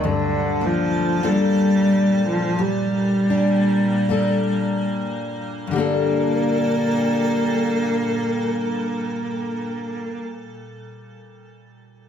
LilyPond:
<<
  \new Staff \with { instrumentName = "Steel-string acoustic guitar" } { \time 4/4 \key g \minor \tempo 4 = 38 g,8 bes8 <bes d' a'>4 g8 d'8 <bes d' a'>4 | <g, d g bes d' a'>1 | }
  \new Staff \with { instrumentName = "Ambient pad" } { \clef bass \time 4/4 \key g \minor << { a'2 bes2 | <bes, g a'>1 | } \\ { <bes, g>1 | r1 | } >> }
  \new Staff \with { instrumentName = "Cello" } { \clef bass \time 4/4 \key g \minor d8 f8 g8. f16 g4. r8 | bes1 | }
>>